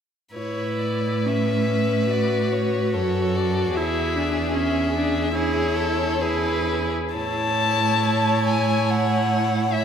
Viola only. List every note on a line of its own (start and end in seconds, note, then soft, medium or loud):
0.36 1.27 E4 soft
1.26 2.11 C#4 soft
2.11 3.78 F#4 soft
3.76 4.17 E4 soft
4.15 4.56 D4 soft
4.55 4.94 C#4 soft
4.95 5.34 D4 soft
5.34 6.20 E4 soft
6.22 6.93 E4 soft
7.15 9.70 E4 soft
9.75 9.85 E4 soft